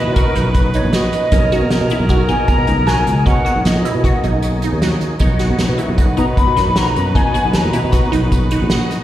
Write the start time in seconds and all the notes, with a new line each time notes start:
Already playing: A#2 C#4 D#4 E4 F#4 B4 D#5
0.07 B2
0.13 F#4 A#4, kick, closed hi-hat
0.35 B1 D#4, snare, closed hi-hat
0.51 B4, kick, closed hi-hat
0.73 D#4 C#5, closed hi-hat
0.85 A#1
0.91 F#4 D#5, snare, closed hi-hat
1.13 closed hi-hat
1.32 B1 A#3 C#4 D#4 G#4 A#4, kick, closed hi-hat
1.52 F#4, snare, closed hi-hat
1.61 B2
1.70 B2, snare, closed hi-hat
1.81 B2
1.90 E4, closed hi-hat
2.00 B1
2.09 F#4, kick, closed hi-hat
2.28 B2 D#4 G#5, closed hi-hat
2.48 A#5, kick, closed hi-hat
2.58 B2
2.67 C#2 D#4, closed hi-hat
2.78 B1
2.87 F#4 G#5, snare, closed hi-hat
3.07 C#2, closed hi-hat
3.26 B2 C#4 F#5, kick, closed hi-hat
3.45 F#4, closed hi-hat
3.56 B1
3.65 A#1 D#5, snare, closed hi-hat
3.75 B2
3.85 E4, closed hi-hat
3.95 B2
4.04 F#4, kick, closed hi-hat
4.24 B1 D#4, closed hi-hat
4.42 closed hi-hat
4.62 D#4, closed hi-hat
4.72 D#2
4.82 F#4, snare, closed hi-hat
5.01 closed hi-hat
5.19 B1 A#2 C#4 D#4 F#4 B4, kick, closed hi-hat
5.39 F#4, snare, closed hi-hat
5.50 B2
5.59 B2, snare, closed hi-hat
5.69 B2
5.78 E4, closed hi-hat
5.88 B1
5.98 F#4, kick, closed hi-hat
6.17 B2 D#4 A#5, closed hi-hat
6.37 B5, kick, closed hi-hat
6.47 B2
6.57 F#2 D#4, snare, closed hi-hat
6.68 B1
6.76 F#4 A#5, snare, closed hi-hat
6.96 F#2, closed hi-hat
7.15 B2 D#4 G#5, kick, closed hi-hat
7.34 F#4, closed hi-hat
7.44 B1
7.53 D#2 A#5, snare, closed hi-hat
7.65 B2
7.73 E4, closed hi-hat
7.84 B2
7.92 F#4, kick, snare, closed hi-hat
8.12 B1 D#4, closed hi-hat
8.32 kick, closed hi-hat
8.51 D#4 F#5, closed hi-hat
8.62 A#1
8.70 F#4 D#5, snare, closed hi-hat
8.91 snare, closed hi-hat